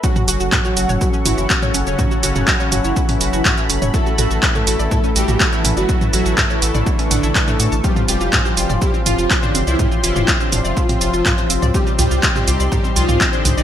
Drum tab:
HH |--o---o---o---o-|--o---o--oo---o-|--o---o---o---o-|--o---o--oo---o-|
SH |xxxxxxxxxxxxxxxx|xxxxxxxxxxxxxxxx|xxxxxxxxxxxxxxxx|xxxxxxxxxxxxxxxx|
CP |----x-------x---|----x-------x---|----x-------x---|----x-------x---|
T2 |-o--o--o--o--o--|o--o--o--o--o--o|--o--o--o--o--o-|-o--o--o--o--o--|
BD |o---o---o---o---|o---o---o---o---|o---o---o---o---|o---o---o---o---|

HH |--o---o---o---o-|--o---o--oo---o-|--o---o---o---o-|
SH |xxxxxxxxxxxxxxxx|xxxxxxxxxxxxxxxx|xxxxxxxxxxxxxxxx|
CP |----x-------x---|----x-------x---|----x-------x---|
T2 |-o--o--o--o--o--|o--o--o--o--o--o|--o--o--o--o--o-|
BD |o---o---o---o---|o---o---o---o---|o---o---o---o---|